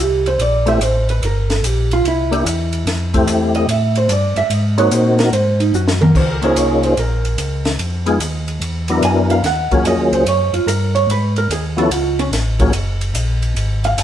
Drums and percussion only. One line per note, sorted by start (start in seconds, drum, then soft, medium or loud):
0.26 ride soft
0.39 ride medium
0.67 ride soft
0.81 hi-hat pedal soft
0.81 ride medium
1.09 ride soft
1.23 ride medium
1.50 snare soft
1.50 ride soft
1.64 hi-hat pedal medium
1.64 ride medium
1.91 ride soft
2.05 ride medium
2.32 ride soft
2.46 hi-hat pedal medium
2.46 ride medium
2.73 ride soft
2.87 snare soft
2.87 ride medium
3.14 kick soft
3.14 ride soft
3.28 hi-hat pedal medium
3.28 ride medium
3.55 ride soft
3.69 ride medium
3.95 ride soft
4.09 hi-hat pedal medium
4.09 ride medium
4.36 ride soft
4.50 ride medium
4.78 ride soft
4.91 hi-hat pedal medium
4.91 ride medium
5.19 snare soft
5.19 ride soft
5.33 ride medium
5.60 ride soft
5.74 hi-hat pedal medium
5.88 snare medium
6.02 mid tom medium
6.15 kick medium
6.15 crash medium
6.42 ride soft
6.56 hi-hat pedal medium
6.56 ride medium
6.83 ride soft
6.97 ride medium
7.25 ride soft
7.38 hi-hat pedal medium
7.38 ride medium
7.65 snare soft
7.65 ride soft
7.79 ride medium
8.06 ride soft
8.20 hi-hat pedal medium
8.20 ride medium
8.48 ride soft
8.62 ride medium
8.88 ride soft
9.03 hi-hat pedal medium
9.03 ride medium
9.30 ride soft
9.44 snare soft
9.44 ride medium
9.71 kick medium
9.71 ride soft
9.85 hi-hat pedal medium
9.85 ride medium
10.13 ride soft
10.26 ride medium
10.54 ride soft
10.68 hi-hat pedal medium
10.68 ride medium
10.95 ride soft
11.10 ride medium
11.36 ride soft
11.51 hi-hat pedal soft
11.51 ride medium
11.78 ride soft
11.91 ride medium
12.19 ride soft
12.33 snare soft
12.33 hi-hat pedal medium
12.33 ride medium
12.59 kick medium
12.59 ride soft
12.73 ride medium
13.01 ride soft
13.15 hi-hat pedal soft
13.15 ride medium
13.42 ride soft
13.56 ride medium
13.84 ride soft
13.98 hi-hat pedal medium
13.98 ride medium